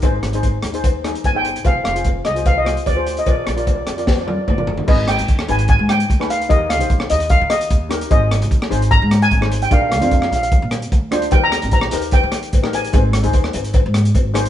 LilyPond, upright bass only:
\new Staff \with { instrumentName = "Upright bass" } { \clef bass \time 4/4 \key aes \lydian \tempo 4 = 149 aes,,8 aes,,4 ees,4. g,,4 | f,,8 f,,4 c,4. d,4 | bes,,8 bes,,4 f,4. g,,4 | aes,,8. ees,8. aes,,8. aes,8. d,4 |
ees,8. bes,,8. ees,8. ees8. ees,4 | aes,,8. ees,8. aes,,8. aes,8. aes,,4 | bes,,8. f,8. bes,,8. bes,8. d,4 | ees,8. bes,,8. ees,8. ees8. a,,4 |
aes,,8. ees,8. aes,,8. aes,8. aes,,4 | }